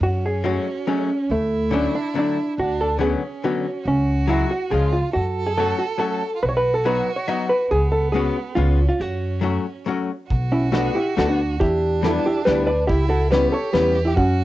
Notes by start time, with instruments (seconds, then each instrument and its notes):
0.01 upright bass F#2, violin C#4, hollow-body jazz guitar F#4
0.26 hollow-body jazz guitar G#4
0.44 hollow-body jazz guitar F#3 G#3 A3 C#4 F#4
0.87 hollow-body jazz guitar F#3 G#3 A3 C#4
1.30 upright bass D2, hollow-body jazz guitar A3, violin E4
1.71 hollow-body jazz guitar D3 F#3 A3 C#4 D4
1.95 hollow-body jazz guitar D4
2.15 hollow-body jazz guitar D3 F#3 A3 D4
2.58 upright bass D2, violin D4, hollow-body jazz guitar F#4
2.81 hollow-body jazz guitar A4
2.99 hollow-body jazz guitar D3 F#3 B3 C#4 G#4, violin C#4
3.44 hollow-body jazz guitar D3 F#3 B3 C#4 F#4
3.84 upright bass C#2, hollow-body jazz guitar C#4, violin F#4
4.28 hollow-body jazz guitar F#3 G#3 C#4 E4 F#4
4.51 hollow-body jazz guitar F#4
4.71 upright bass C#2, hollow-body jazz guitar F3 G#3 C#4 F4 G#4, violin F4
4.93 hollow-body jazz guitar F4
5.13 upright bass F#2, hollow-body jazz guitar F#4, violin A4
5.47 hollow-body jazz guitar G#4
5.58 hollow-body jazz guitar F#3 A3 C#4 F#4 A4
5.79 hollow-body jazz guitar F#4
5.98 hollow-body jazz guitar F#3 A3 C#4 F#4 A4
6.36 violin F4
6.43 upright bass B1, violin F#4, hollow-body jazz guitar B4
6.49 hollow-body jazz guitar C#5
6.57 hollow-body jazz guitar B4
6.74 hollow-body jazz guitar A4
6.85 hollow-body jazz guitar F#3 B3 D#4 F#4 B4
7.16 hollow-body jazz guitar C#5
7.28 hollow-body jazz guitar F#3 B3 D#4 F#4 D#5
7.49 hollow-body jazz guitar B4
7.70 upright bass C#2, violin B3, hollow-body jazz guitar G#4
7.92 hollow-body jazz guitar A4
8.12 hollow-body jazz guitar G#3 B3 C#4 F#4 G#4
8.55 upright bass C#2, hollow-body jazz guitar G#3 B3 C#4 F4, violin C#4
8.89 hollow-body jazz guitar F4
8.98 upright bass F#2, violin C#4, hollow-body jazz guitar F#4
9.41 hollow-body jazz guitar F#3 A3 C#4 F#4
9.86 hollow-body jazz guitar F#3 A3 C#4 F#4
10.27 upright bass B1, violin F#4, kick, closed hi-hat
10.52 hollow-body jazz guitar C#4 E4
10.72 hollow-body jazz guitar A3 B3 D4 F#4, snare
10.95 hollow-body jazz guitar E4 G4
11.17 upright bass D2, hollow-body jazz guitar A3 B3 D4 F#4 A4, snare, closed hi-hat
11.28 hollow-body jazz guitar D4 F#4
11.60 upright bass E2, violin D4, hollow-body jazz guitar E4 G4, kick, closed hi-hat
12.03 hollow-body jazz guitar G3 B3 D4 E4 A4, snare, closed hi-hat
12.26 hollow-body jazz guitar E4 G4
12.45 upright bass D2, hollow-body jazz guitar G3 B3 D4 E4 G4 B4, snare, closed hi-hat
12.66 hollow-body jazz guitar B4 D5
12.87 upright bass C#2, hollow-body jazz guitar E4 G4, violin E4, kick, closed hi-hat
13.09 hollow-body jazz guitar F#4 A4
13.30 hollow-body jazz guitar G3 B3 C#4 E4 G4 B4, violin G4, snare, closed hi-hat
13.52 hollow-body jazz guitar A4 C#5
13.73 upright bass E2, hollow-body jazz guitar G3 B3 C#4 E4 G4 B4, snare, closed hi-hat
14.05 hollow-body jazz guitar E4 G4
14.15 upright bass F#2, hollow-body jazz guitar C#4 F#4, violin F#4, kick, closed hi-hat